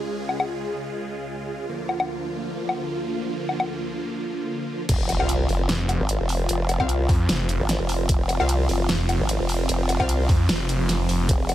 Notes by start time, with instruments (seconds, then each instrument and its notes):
Already playing: supersaw synth C#2 C#3 G#3 F4 G#4
0.29 low woodblock
0.40 low woodblock
1.69 supersaw synth D2 D3 F3 A#3
1.89 low woodblock
2.00 low woodblock
2.69 low woodblock
3.49 low woodblock
3.60 low woodblock
4.89 wobble bass F1, supersaw synth F4, kick, closed hi-hat, crash, impact
5.09 closed hi-hat, low woodblock
5.20 wobble bass C2, synth stab C4 F4 F5, low woodblock
5.29 closed hi-hat
5.49 wobble bass F#1, open hi-hat
5.69 detuned saw bass F1, snare, closed hi-hat
5.89 closed hi-hat, low woodblock
6.00 wobble bass G#1
6.09 closed hi-hat
6.20 wobble bass F1
6.29 open hi-hat
6.49 wobble bass F1, closed hi-hat
6.69 closed hi-hat, low woodblock
6.80 wobble bass C2, synth stab C4 F4 F5, kick, low woodblock
6.89 closed hi-hat
7.09 detuned saw bass F2, kick, open hi-hat
7.29 detuned saw bass F1, snare, closed hi-hat
7.49 closed hi-hat
7.60 wobble bass G#1
7.69 snare, closed hi-hat
7.80 wobble bass F1
7.89 open hi-hat
8.09 wobble bass F1, kick, closed hi-hat
8.29 closed hi-hat, low woodblock
8.40 wobble bass C2, synth stab C4 F4 F5, low woodblock
8.49 closed hi-hat
8.69 wobble bass F#1, open hi-hat
8.89 detuned saw bass F1, snare, closed hi-hat
9.09 closed hi-hat, low woodblock
9.20 wobble bass G#1
9.29 closed hi-hat
9.40 wobble bass F1
9.49 open hi-hat
9.69 wobble bass F1, closed hi-hat
9.89 closed hi-hat, low woodblock
10.00 wobble bass C2, synth stab C4 F4 F5, kick, low woodblock
10.09 closed hi-hat
10.29 detuned saw bass F2, kick, open hi-hat
10.49 detuned saw bass F1, snare, closed hi-hat
10.69 closed hi-hat
10.89 snare, closed hi-hat
11.09 detuned saw bass F1, open hi-hat
11.29 wobble bass F1, supersaw synth G#4, kick, closed hi-hat
11.49 closed hi-hat, low woodblock